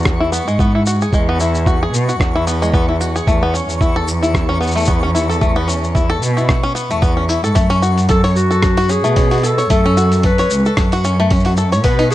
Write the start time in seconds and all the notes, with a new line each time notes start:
Already playing: E2 F#4 C#6
0.02 kick, cross-stick, shaker
0.06 shaker
0.20 E4
0.32 B3, shaker
0.48 G#2 G#3, shaker
0.59 B3, kick, shaker
0.75 E4
0.86 F#4, shaker
1.01 G#4, shaker
1.13 E2 G#3, kick, shaker
1.29 B3
1.40 E4, shaker
1.55 shaker
1.66 F#4, kick, shaker
1.83 G#4
1.93 B2, shaker
2.09 F#4, shaker
2.20 E2, kick, cross-stick, shaker
2.35 E4
2.47 B3, shaker
2.62 G#3, shaker
2.74 B3, kick, shaker
2.89 E4
3.01 F#4, shaker
3.16 G#4, shaker
3.27 E2 A3, kick, shaker
3.43 B3
3.54 C#4, shaker
3.69 E2, shaker
3.81 E4, kick, shaker
3.96 A4
4.08 shaker
4.22 E4, shaker
4.34 kick, cross-stick, shaker
4.49 C#4
4.61 B3, shaker
4.67 shaker
4.71 shaker
4.76 A3, shaker
4.80 shaker
4.85 B3, kick, shaker
4.88 shaker
5.03 C#4
5.15 E4, shaker
5.29 A4, shaker
5.41 A3, kick, shaker
5.56 B3
5.68 C#4, shaker
5.84 shaker
5.95 E4, kick, shaker
6.10 A4
6.22 B2, shaker
6.37 E4, shaker
6.49 kick, cross-stick, shaker
6.63 C#4
6.75 B3, shaker
6.91 E2 A3, shaker
7.02 B3, kick, shaker
7.17 C#4
7.29 E4, shaker
7.44 G#2 A4, shaker
7.55 F#2 A3, kick, open hi-hat, shaker
7.70 C#4, open hi-hat
7.82 F#4, shaker
7.98 open hi-hat, shaker
8.09 A4, kick, open hi-hat, shaker
8.24 C#5, open hi-hat
8.36 F#4, shaker
8.51 A4, shaker
8.63 kick, cross-stick, open hi-hat, shaker
8.77 F#4, open hi-hat
8.89 C#4 G#4, shaker
9.04 B2 A3, shaker
9.16 C#4, kick, open hi-hat, shaker
9.31 F#4, open hi-hat
9.34 open hi-hat
9.38 open hi-hat
9.40 open hi-hat
9.42 A4, open hi-hat, shaker
9.58 C#5, open hi-hat, shaker
9.70 F#2 A3 A4, kick, open hi-hat, shaker
9.86 C#4
9.97 F#4, shaker
10.12 open hi-hat, shaker
10.23 A4 B4, kick, open hi-hat
10.38 C#5, open hi-hat, shaker
10.50 C#2, shaker
10.65 A4, shaker
10.77 F#2, kick, cross-stick, open hi-hat, shaker
10.92 F#4, open hi-hat
11.04 C#4, shaker
11.20 A3
11.30 C#4, kick, open hi-hat, shaker
11.36 shaker
11.39 shaker
11.45 F#4, open hi-hat
11.57 A4, shaker
11.72 C#5, open hi-hat, shaker
11.84 B2 B3 B4, kick, open hi-hat, shaker
11.99 D#4, open hi-hat
12.10 F#4 G#4, shaker